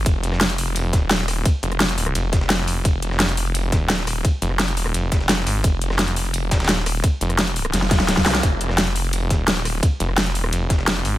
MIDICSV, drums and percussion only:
0, 0, Header, 1, 2, 480
1, 0, Start_track
1, 0, Key_signature, -4, "minor"
1, 0, Tempo, 348837
1, 83, Time_signature, 4, 2, 24, 8
1, 15385, End_track
2, 0, Start_track
2, 0, Title_t, "Drums"
2, 82, Note_on_c, 9, 36, 124
2, 82, Note_on_c, 9, 51, 91
2, 83, Note_on_c, 9, 42, 84
2, 220, Note_off_c, 9, 36, 0
2, 220, Note_off_c, 9, 51, 0
2, 221, Note_off_c, 9, 42, 0
2, 322, Note_on_c, 9, 51, 64
2, 324, Note_on_c, 9, 42, 63
2, 442, Note_on_c, 9, 38, 41
2, 444, Note_on_c, 9, 37, 34
2, 460, Note_off_c, 9, 51, 0
2, 461, Note_off_c, 9, 42, 0
2, 563, Note_off_c, 9, 38, 0
2, 563, Note_on_c, 9, 38, 125
2, 563, Note_on_c, 9, 42, 90
2, 563, Note_on_c, 9, 51, 90
2, 581, Note_off_c, 9, 37, 0
2, 683, Note_off_c, 9, 42, 0
2, 683, Note_on_c, 9, 42, 36
2, 700, Note_off_c, 9, 51, 0
2, 701, Note_off_c, 9, 38, 0
2, 802, Note_on_c, 9, 51, 71
2, 803, Note_on_c, 9, 46, 78
2, 821, Note_off_c, 9, 42, 0
2, 922, Note_off_c, 9, 51, 0
2, 922, Note_on_c, 9, 51, 46
2, 940, Note_off_c, 9, 46, 0
2, 1042, Note_on_c, 9, 46, 85
2, 1043, Note_on_c, 9, 42, 88
2, 1060, Note_off_c, 9, 51, 0
2, 1179, Note_off_c, 9, 46, 0
2, 1180, Note_off_c, 9, 42, 0
2, 1282, Note_on_c, 9, 36, 107
2, 1282, Note_on_c, 9, 38, 58
2, 1282, Note_on_c, 9, 51, 73
2, 1283, Note_on_c, 9, 42, 65
2, 1419, Note_off_c, 9, 36, 0
2, 1420, Note_off_c, 9, 38, 0
2, 1420, Note_off_c, 9, 42, 0
2, 1420, Note_off_c, 9, 51, 0
2, 1522, Note_on_c, 9, 38, 113
2, 1522, Note_on_c, 9, 51, 85
2, 1523, Note_off_c, 9, 38, 0
2, 1523, Note_on_c, 9, 38, 119
2, 1523, Note_on_c, 9, 42, 88
2, 1642, Note_off_c, 9, 38, 0
2, 1642, Note_on_c, 9, 38, 48
2, 1659, Note_off_c, 9, 51, 0
2, 1661, Note_off_c, 9, 42, 0
2, 1761, Note_on_c, 9, 51, 66
2, 1763, Note_on_c, 9, 37, 35
2, 1763, Note_on_c, 9, 46, 82
2, 1779, Note_off_c, 9, 38, 0
2, 1899, Note_off_c, 9, 51, 0
2, 1901, Note_off_c, 9, 37, 0
2, 1901, Note_off_c, 9, 46, 0
2, 2001, Note_on_c, 9, 51, 91
2, 2002, Note_on_c, 9, 36, 127
2, 2002, Note_on_c, 9, 42, 86
2, 2139, Note_off_c, 9, 36, 0
2, 2139, Note_off_c, 9, 51, 0
2, 2140, Note_off_c, 9, 42, 0
2, 2241, Note_on_c, 9, 51, 70
2, 2243, Note_on_c, 9, 42, 64
2, 2362, Note_off_c, 9, 42, 0
2, 2362, Note_on_c, 9, 37, 32
2, 2362, Note_on_c, 9, 42, 35
2, 2379, Note_off_c, 9, 51, 0
2, 2481, Note_on_c, 9, 38, 116
2, 2481, Note_on_c, 9, 51, 94
2, 2482, Note_off_c, 9, 38, 0
2, 2482, Note_off_c, 9, 42, 0
2, 2482, Note_on_c, 9, 38, 125
2, 2482, Note_on_c, 9, 42, 87
2, 2500, Note_off_c, 9, 37, 0
2, 2602, Note_off_c, 9, 42, 0
2, 2602, Note_on_c, 9, 42, 35
2, 2619, Note_off_c, 9, 38, 0
2, 2619, Note_off_c, 9, 51, 0
2, 2722, Note_on_c, 9, 46, 80
2, 2722, Note_on_c, 9, 51, 70
2, 2740, Note_off_c, 9, 42, 0
2, 2843, Note_on_c, 9, 37, 53
2, 2843, Note_on_c, 9, 42, 35
2, 2859, Note_off_c, 9, 51, 0
2, 2860, Note_off_c, 9, 46, 0
2, 2961, Note_on_c, 9, 51, 92
2, 2962, Note_off_c, 9, 42, 0
2, 2962, Note_on_c, 9, 42, 86
2, 2980, Note_off_c, 9, 37, 0
2, 3099, Note_off_c, 9, 51, 0
2, 3100, Note_off_c, 9, 42, 0
2, 3202, Note_on_c, 9, 36, 102
2, 3202, Note_on_c, 9, 38, 60
2, 3202, Note_on_c, 9, 42, 62
2, 3202, Note_on_c, 9, 51, 70
2, 3322, Note_off_c, 9, 38, 0
2, 3322, Note_on_c, 9, 38, 50
2, 3339, Note_off_c, 9, 51, 0
2, 3340, Note_off_c, 9, 36, 0
2, 3340, Note_off_c, 9, 42, 0
2, 3442, Note_off_c, 9, 38, 0
2, 3442, Note_on_c, 9, 38, 113
2, 3442, Note_on_c, 9, 42, 89
2, 3442, Note_on_c, 9, 51, 84
2, 3579, Note_off_c, 9, 42, 0
2, 3580, Note_off_c, 9, 38, 0
2, 3580, Note_off_c, 9, 51, 0
2, 3682, Note_on_c, 9, 46, 83
2, 3682, Note_on_c, 9, 51, 67
2, 3820, Note_off_c, 9, 46, 0
2, 3820, Note_off_c, 9, 51, 0
2, 3922, Note_on_c, 9, 36, 119
2, 3922, Note_on_c, 9, 42, 87
2, 3922, Note_on_c, 9, 51, 89
2, 4059, Note_off_c, 9, 42, 0
2, 4059, Note_off_c, 9, 51, 0
2, 4060, Note_off_c, 9, 36, 0
2, 4162, Note_on_c, 9, 42, 67
2, 4162, Note_on_c, 9, 51, 71
2, 4282, Note_on_c, 9, 38, 39
2, 4283, Note_on_c, 9, 37, 31
2, 4299, Note_off_c, 9, 42, 0
2, 4299, Note_off_c, 9, 51, 0
2, 4402, Note_off_c, 9, 38, 0
2, 4402, Note_on_c, 9, 38, 123
2, 4402, Note_on_c, 9, 51, 90
2, 4403, Note_off_c, 9, 38, 0
2, 4403, Note_on_c, 9, 38, 115
2, 4403, Note_on_c, 9, 42, 86
2, 4420, Note_off_c, 9, 37, 0
2, 4523, Note_off_c, 9, 42, 0
2, 4523, Note_on_c, 9, 42, 36
2, 4540, Note_off_c, 9, 38, 0
2, 4540, Note_off_c, 9, 51, 0
2, 4642, Note_on_c, 9, 46, 85
2, 4642, Note_on_c, 9, 51, 69
2, 4660, Note_off_c, 9, 42, 0
2, 4763, Note_off_c, 9, 51, 0
2, 4763, Note_on_c, 9, 51, 46
2, 4780, Note_off_c, 9, 46, 0
2, 4882, Note_on_c, 9, 42, 93
2, 4883, Note_on_c, 9, 46, 85
2, 4900, Note_off_c, 9, 51, 0
2, 5020, Note_off_c, 9, 42, 0
2, 5020, Note_off_c, 9, 46, 0
2, 5122, Note_on_c, 9, 36, 102
2, 5123, Note_on_c, 9, 38, 59
2, 5123, Note_on_c, 9, 42, 59
2, 5123, Note_on_c, 9, 51, 71
2, 5260, Note_off_c, 9, 36, 0
2, 5260, Note_off_c, 9, 42, 0
2, 5261, Note_off_c, 9, 38, 0
2, 5261, Note_off_c, 9, 51, 0
2, 5362, Note_on_c, 9, 38, 113
2, 5362, Note_on_c, 9, 42, 88
2, 5363, Note_off_c, 9, 38, 0
2, 5363, Note_on_c, 9, 38, 118
2, 5363, Note_on_c, 9, 51, 89
2, 5483, Note_off_c, 9, 38, 0
2, 5483, Note_on_c, 9, 38, 47
2, 5500, Note_off_c, 9, 42, 0
2, 5500, Note_off_c, 9, 51, 0
2, 5603, Note_on_c, 9, 37, 34
2, 5603, Note_on_c, 9, 46, 86
2, 5603, Note_on_c, 9, 51, 68
2, 5621, Note_off_c, 9, 38, 0
2, 5741, Note_off_c, 9, 37, 0
2, 5741, Note_off_c, 9, 46, 0
2, 5741, Note_off_c, 9, 51, 0
2, 5842, Note_on_c, 9, 36, 113
2, 5843, Note_on_c, 9, 42, 84
2, 5843, Note_on_c, 9, 51, 92
2, 5980, Note_off_c, 9, 36, 0
2, 5981, Note_off_c, 9, 42, 0
2, 5981, Note_off_c, 9, 51, 0
2, 6083, Note_on_c, 9, 42, 69
2, 6083, Note_on_c, 9, 51, 70
2, 6203, Note_on_c, 9, 37, 31
2, 6221, Note_off_c, 9, 42, 0
2, 6221, Note_off_c, 9, 51, 0
2, 6322, Note_on_c, 9, 38, 114
2, 6322, Note_on_c, 9, 42, 92
2, 6322, Note_on_c, 9, 51, 87
2, 6341, Note_off_c, 9, 37, 0
2, 6442, Note_off_c, 9, 42, 0
2, 6442, Note_on_c, 9, 42, 36
2, 6460, Note_off_c, 9, 38, 0
2, 6460, Note_off_c, 9, 51, 0
2, 6563, Note_on_c, 9, 46, 81
2, 6563, Note_on_c, 9, 51, 73
2, 6580, Note_off_c, 9, 42, 0
2, 6683, Note_on_c, 9, 37, 51
2, 6700, Note_off_c, 9, 46, 0
2, 6700, Note_off_c, 9, 51, 0
2, 6803, Note_on_c, 9, 42, 93
2, 6803, Note_on_c, 9, 51, 91
2, 6820, Note_off_c, 9, 37, 0
2, 6940, Note_off_c, 9, 42, 0
2, 6941, Note_off_c, 9, 51, 0
2, 7042, Note_on_c, 9, 36, 99
2, 7042, Note_on_c, 9, 42, 65
2, 7043, Note_on_c, 9, 38, 62
2, 7043, Note_on_c, 9, 51, 70
2, 7163, Note_off_c, 9, 38, 0
2, 7163, Note_on_c, 9, 38, 48
2, 7179, Note_off_c, 9, 36, 0
2, 7180, Note_off_c, 9, 42, 0
2, 7180, Note_off_c, 9, 51, 0
2, 7282, Note_off_c, 9, 38, 0
2, 7282, Note_on_c, 9, 38, 113
2, 7282, Note_on_c, 9, 42, 88
2, 7282, Note_on_c, 9, 51, 88
2, 7420, Note_off_c, 9, 38, 0
2, 7420, Note_off_c, 9, 42, 0
2, 7420, Note_off_c, 9, 51, 0
2, 7522, Note_on_c, 9, 51, 67
2, 7523, Note_on_c, 9, 46, 86
2, 7659, Note_off_c, 9, 51, 0
2, 7660, Note_off_c, 9, 46, 0
2, 7762, Note_on_c, 9, 36, 117
2, 7762, Note_on_c, 9, 42, 95
2, 7762, Note_on_c, 9, 51, 89
2, 7899, Note_off_c, 9, 36, 0
2, 7899, Note_off_c, 9, 42, 0
2, 7899, Note_off_c, 9, 51, 0
2, 8002, Note_on_c, 9, 42, 71
2, 8002, Note_on_c, 9, 51, 69
2, 8122, Note_on_c, 9, 37, 32
2, 8122, Note_on_c, 9, 38, 41
2, 8139, Note_off_c, 9, 51, 0
2, 8140, Note_off_c, 9, 42, 0
2, 8242, Note_off_c, 9, 38, 0
2, 8242, Note_on_c, 9, 38, 109
2, 8242, Note_on_c, 9, 42, 91
2, 8242, Note_on_c, 9, 51, 90
2, 8259, Note_off_c, 9, 37, 0
2, 8363, Note_off_c, 9, 42, 0
2, 8363, Note_on_c, 9, 42, 39
2, 8380, Note_off_c, 9, 38, 0
2, 8380, Note_off_c, 9, 51, 0
2, 8482, Note_on_c, 9, 46, 84
2, 8482, Note_on_c, 9, 51, 72
2, 8500, Note_off_c, 9, 42, 0
2, 8602, Note_off_c, 9, 51, 0
2, 8602, Note_on_c, 9, 51, 45
2, 8620, Note_off_c, 9, 46, 0
2, 8722, Note_on_c, 9, 42, 95
2, 8722, Note_on_c, 9, 46, 88
2, 8740, Note_off_c, 9, 51, 0
2, 8859, Note_off_c, 9, 42, 0
2, 8860, Note_off_c, 9, 46, 0
2, 8962, Note_on_c, 9, 36, 99
2, 8962, Note_on_c, 9, 38, 109
2, 8962, Note_on_c, 9, 51, 79
2, 8963, Note_on_c, 9, 42, 65
2, 9083, Note_off_c, 9, 38, 0
2, 9083, Note_off_c, 9, 51, 0
2, 9083, Note_on_c, 9, 38, 95
2, 9083, Note_on_c, 9, 51, 71
2, 9099, Note_off_c, 9, 36, 0
2, 9100, Note_off_c, 9, 42, 0
2, 9143, Note_off_c, 9, 38, 0
2, 9143, Note_off_c, 9, 51, 0
2, 9143, Note_on_c, 9, 38, 96
2, 9143, Note_on_c, 9, 51, 72
2, 9202, Note_off_c, 9, 38, 0
2, 9202, Note_off_c, 9, 51, 0
2, 9202, Note_on_c, 9, 38, 112
2, 9202, Note_on_c, 9, 51, 82
2, 9203, Note_off_c, 9, 38, 0
2, 9203, Note_on_c, 9, 38, 110
2, 9203, Note_on_c, 9, 42, 93
2, 9322, Note_off_c, 9, 38, 0
2, 9322, Note_on_c, 9, 38, 48
2, 9339, Note_off_c, 9, 51, 0
2, 9340, Note_off_c, 9, 42, 0
2, 9442, Note_on_c, 9, 51, 66
2, 9443, Note_on_c, 9, 37, 36
2, 9443, Note_on_c, 9, 46, 85
2, 9460, Note_off_c, 9, 38, 0
2, 9580, Note_off_c, 9, 37, 0
2, 9580, Note_off_c, 9, 46, 0
2, 9580, Note_off_c, 9, 51, 0
2, 9682, Note_on_c, 9, 36, 116
2, 9683, Note_on_c, 9, 42, 95
2, 9683, Note_on_c, 9, 51, 88
2, 9820, Note_off_c, 9, 36, 0
2, 9820, Note_off_c, 9, 51, 0
2, 9821, Note_off_c, 9, 42, 0
2, 9922, Note_on_c, 9, 51, 67
2, 9924, Note_on_c, 9, 42, 71
2, 10043, Note_off_c, 9, 42, 0
2, 10043, Note_on_c, 9, 37, 34
2, 10043, Note_on_c, 9, 42, 39
2, 10060, Note_off_c, 9, 51, 0
2, 10162, Note_on_c, 9, 38, 117
2, 10162, Note_on_c, 9, 51, 91
2, 10164, Note_off_c, 9, 38, 0
2, 10164, Note_off_c, 9, 42, 0
2, 10164, Note_on_c, 9, 38, 111
2, 10164, Note_on_c, 9, 42, 99
2, 10181, Note_off_c, 9, 37, 0
2, 10283, Note_off_c, 9, 42, 0
2, 10283, Note_on_c, 9, 42, 37
2, 10300, Note_off_c, 9, 51, 0
2, 10301, Note_off_c, 9, 38, 0
2, 10403, Note_on_c, 9, 46, 75
2, 10403, Note_on_c, 9, 51, 70
2, 10421, Note_off_c, 9, 42, 0
2, 10524, Note_on_c, 9, 37, 56
2, 10524, Note_on_c, 9, 42, 39
2, 10541, Note_off_c, 9, 46, 0
2, 10541, Note_off_c, 9, 51, 0
2, 10644, Note_off_c, 9, 42, 0
2, 10644, Note_on_c, 9, 38, 61
2, 10644, Note_on_c, 9, 42, 99
2, 10644, Note_on_c, 9, 51, 94
2, 10662, Note_off_c, 9, 37, 0
2, 10764, Note_off_c, 9, 38, 0
2, 10764, Note_on_c, 9, 38, 56
2, 10781, Note_off_c, 9, 42, 0
2, 10781, Note_off_c, 9, 51, 0
2, 10883, Note_off_c, 9, 38, 0
2, 10883, Note_on_c, 9, 36, 104
2, 10883, Note_on_c, 9, 38, 60
2, 10883, Note_on_c, 9, 51, 74
2, 10884, Note_off_c, 9, 38, 0
2, 10884, Note_on_c, 9, 38, 70
2, 10884, Note_on_c, 9, 42, 69
2, 11004, Note_off_c, 9, 38, 0
2, 11004, Note_on_c, 9, 38, 49
2, 11005, Note_off_c, 9, 38, 0
2, 11005, Note_on_c, 9, 38, 71
2, 11020, Note_off_c, 9, 36, 0
2, 11021, Note_off_c, 9, 42, 0
2, 11021, Note_off_c, 9, 51, 0
2, 11123, Note_off_c, 9, 38, 0
2, 11123, Note_on_c, 9, 38, 103
2, 11123, Note_on_c, 9, 51, 78
2, 11125, Note_off_c, 9, 38, 0
2, 11125, Note_on_c, 9, 38, 83
2, 11125, Note_on_c, 9, 42, 94
2, 11243, Note_on_c, 9, 36, 60
2, 11244, Note_off_c, 9, 38, 0
2, 11244, Note_on_c, 9, 38, 79
2, 11261, Note_off_c, 9, 51, 0
2, 11262, Note_off_c, 9, 42, 0
2, 11364, Note_off_c, 9, 38, 0
2, 11364, Note_on_c, 9, 38, 100
2, 11364, Note_on_c, 9, 46, 78
2, 11364, Note_on_c, 9, 51, 64
2, 11380, Note_off_c, 9, 36, 0
2, 11424, Note_off_c, 9, 38, 0
2, 11424, Note_off_c, 9, 51, 0
2, 11424, Note_on_c, 9, 38, 90
2, 11424, Note_on_c, 9, 51, 67
2, 11484, Note_off_c, 9, 38, 0
2, 11484, Note_off_c, 9, 51, 0
2, 11484, Note_on_c, 9, 38, 107
2, 11484, Note_on_c, 9, 51, 82
2, 11485, Note_off_c, 9, 38, 0
2, 11485, Note_on_c, 9, 38, 87
2, 11485, Note_on_c, 9, 42, 40
2, 11502, Note_off_c, 9, 46, 0
2, 11603, Note_on_c, 9, 36, 114
2, 11604, Note_off_c, 9, 42, 0
2, 11604, Note_off_c, 9, 51, 0
2, 11604, Note_on_c, 9, 42, 90
2, 11604, Note_on_c, 9, 51, 87
2, 11622, Note_off_c, 9, 38, 0
2, 11741, Note_off_c, 9, 36, 0
2, 11742, Note_off_c, 9, 42, 0
2, 11742, Note_off_c, 9, 51, 0
2, 11844, Note_on_c, 9, 42, 69
2, 11844, Note_on_c, 9, 51, 69
2, 11964, Note_on_c, 9, 37, 34
2, 11964, Note_on_c, 9, 38, 41
2, 11982, Note_off_c, 9, 42, 0
2, 11982, Note_off_c, 9, 51, 0
2, 12083, Note_off_c, 9, 38, 0
2, 12083, Note_on_c, 9, 38, 117
2, 12083, Note_on_c, 9, 51, 88
2, 12084, Note_off_c, 9, 38, 0
2, 12084, Note_on_c, 9, 38, 121
2, 12084, Note_on_c, 9, 42, 94
2, 12101, Note_off_c, 9, 37, 0
2, 12204, Note_off_c, 9, 42, 0
2, 12204, Note_on_c, 9, 42, 38
2, 12221, Note_off_c, 9, 51, 0
2, 12222, Note_off_c, 9, 38, 0
2, 12323, Note_on_c, 9, 51, 71
2, 12324, Note_on_c, 9, 46, 76
2, 12341, Note_off_c, 9, 42, 0
2, 12444, Note_off_c, 9, 51, 0
2, 12444, Note_on_c, 9, 51, 45
2, 12461, Note_off_c, 9, 46, 0
2, 12563, Note_on_c, 9, 42, 95
2, 12564, Note_on_c, 9, 46, 86
2, 12581, Note_off_c, 9, 51, 0
2, 12700, Note_off_c, 9, 42, 0
2, 12702, Note_off_c, 9, 46, 0
2, 12803, Note_on_c, 9, 36, 98
2, 12803, Note_on_c, 9, 42, 66
2, 12804, Note_on_c, 9, 38, 60
2, 12804, Note_on_c, 9, 51, 71
2, 12940, Note_off_c, 9, 36, 0
2, 12940, Note_off_c, 9, 42, 0
2, 12941, Note_off_c, 9, 38, 0
2, 12941, Note_off_c, 9, 51, 0
2, 13043, Note_on_c, 9, 38, 120
2, 13043, Note_on_c, 9, 42, 93
2, 13044, Note_off_c, 9, 38, 0
2, 13044, Note_on_c, 9, 38, 116
2, 13044, Note_on_c, 9, 51, 87
2, 13164, Note_off_c, 9, 38, 0
2, 13164, Note_on_c, 9, 38, 49
2, 13180, Note_off_c, 9, 42, 0
2, 13181, Note_off_c, 9, 51, 0
2, 13283, Note_on_c, 9, 37, 37
2, 13283, Note_on_c, 9, 46, 81
2, 13284, Note_on_c, 9, 51, 67
2, 13301, Note_off_c, 9, 38, 0
2, 13421, Note_off_c, 9, 37, 0
2, 13421, Note_off_c, 9, 46, 0
2, 13422, Note_off_c, 9, 51, 0
2, 13523, Note_on_c, 9, 36, 126
2, 13524, Note_on_c, 9, 42, 91
2, 13525, Note_on_c, 9, 51, 89
2, 13660, Note_off_c, 9, 36, 0
2, 13661, Note_off_c, 9, 42, 0
2, 13662, Note_off_c, 9, 51, 0
2, 13763, Note_on_c, 9, 42, 66
2, 13764, Note_on_c, 9, 51, 70
2, 13884, Note_on_c, 9, 37, 33
2, 13901, Note_off_c, 9, 42, 0
2, 13901, Note_off_c, 9, 51, 0
2, 14003, Note_on_c, 9, 38, 123
2, 14003, Note_on_c, 9, 42, 87
2, 14004, Note_off_c, 9, 38, 0
2, 14004, Note_on_c, 9, 38, 117
2, 14004, Note_on_c, 9, 51, 94
2, 14021, Note_off_c, 9, 37, 0
2, 14124, Note_off_c, 9, 42, 0
2, 14124, Note_on_c, 9, 42, 37
2, 14141, Note_off_c, 9, 38, 0
2, 14141, Note_off_c, 9, 51, 0
2, 14244, Note_on_c, 9, 46, 72
2, 14244, Note_on_c, 9, 51, 70
2, 14261, Note_off_c, 9, 42, 0
2, 14365, Note_on_c, 9, 37, 58
2, 14381, Note_off_c, 9, 46, 0
2, 14381, Note_off_c, 9, 51, 0
2, 14483, Note_on_c, 9, 51, 91
2, 14485, Note_on_c, 9, 42, 94
2, 14502, Note_off_c, 9, 37, 0
2, 14621, Note_off_c, 9, 51, 0
2, 14623, Note_off_c, 9, 42, 0
2, 14723, Note_on_c, 9, 36, 108
2, 14723, Note_on_c, 9, 38, 61
2, 14723, Note_on_c, 9, 51, 73
2, 14725, Note_on_c, 9, 42, 69
2, 14844, Note_off_c, 9, 38, 0
2, 14844, Note_on_c, 9, 38, 48
2, 14860, Note_off_c, 9, 36, 0
2, 14861, Note_off_c, 9, 51, 0
2, 14863, Note_off_c, 9, 42, 0
2, 14962, Note_off_c, 9, 38, 0
2, 14962, Note_on_c, 9, 38, 115
2, 14962, Note_on_c, 9, 51, 86
2, 14965, Note_off_c, 9, 38, 0
2, 14965, Note_on_c, 9, 38, 120
2, 14965, Note_on_c, 9, 42, 92
2, 15100, Note_off_c, 9, 51, 0
2, 15102, Note_off_c, 9, 38, 0
2, 15102, Note_off_c, 9, 42, 0
2, 15203, Note_on_c, 9, 51, 68
2, 15204, Note_on_c, 9, 46, 77
2, 15341, Note_off_c, 9, 51, 0
2, 15342, Note_off_c, 9, 46, 0
2, 15385, End_track
0, 0, End_of_file